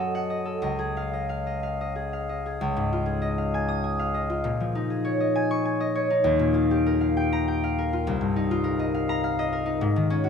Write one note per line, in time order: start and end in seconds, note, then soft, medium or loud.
0.00 0.66 F#2 medium
0.00 2.96 C#4 medium
0.00 0.44 A4 soft
0.00 2.51 C#5 medium
0.00 0.29 D#5 medium
0.00 0.14 F#5 medium
0.15 0.67 F#5 medium
0.30 0.61 D#5 soft
0.45 0.66 A4 soft
0.62 2.60 C#2 medium
0.62 1.12 D#5 soft
0.79 1.94 G#4 soft
0.97 1.28 F5 medium
1.13 1.45 D#5 soft
1.29 1.62 F5 soft
1.47 1.80 D#5 soft
1.63 2.12 F5 soft
1.81 2.28 D#5 soft
1.96 2.45 G#4 soft
2.13 3.37 F5 soft
2.29 3.21 D#5 soft
2.46 3.05 G#4 soft
2.61 4.48 C#2 medium
2.77 4.48 G#2 medium
2.93 4.28 F4 medium
3.06 4.89 G#4 soft
3.22 4.13 D#5 medium
3.38 3.98 F5 soft
3.54 3.83 G#5 medium
3.69 7.59 D#6 medium
3.84 5.34 G#5 soft
3.99 7.00 F5 medium
4.14 5.19 D#5 soft
4.30 6.53 F4 medium
4.44 6.28 A#2 medium
4.60 8.50 F3 soft
4.75 6.09 D#4 medium
4.90 6.29 G#4 soft
5.05 5.94 C#5 medium
5.20 5.79 D#5 soft
5.36 5.64 G#5 medium
5.51 6.29 C#6 medium
5.65 6.29 G#5 soft
5.80 8.78 D#5 medium
5.95 6.29 C#5 medium
6.10 8.35 D#4 medium
6.24 8.08 D#2 medium
6.39 8.08 A#2 medium
6.54 7.92 F4 medium
6.71 9.82 G4 medium
6.86 7.77 A#4 medium
7.01 7.62 F5 medium
7.17 7.47 G5 medium
7.32 9.08 A#5 medium
7.48 9.83 G5 medium
7.64 8.93 F5 medium
7.78 8.63 A#4 medium
7.93 8.50 F4 medium
8.07 9.83 C2 medium
8.21 9.82 G2 medium
8.36 9.65 D#4 medium
8.51 9.83 F4 medium
8.64 9.51 A#4 medium
8.79 9.38 D#5 medium
8.94 9.23 F5 medium
9.09 10.29 A#5 medium
9.24 9.83 F5 medium
9.39 10.29 D#5 medium
9.53 10.29 A#4 medium
9.66 10.29 D#4 medium
9.81 10.29 G#2 medium
9.96 10.29 D#3 medium
10.10 10.29 C#4 medium
10.24 10.29 F#4 medium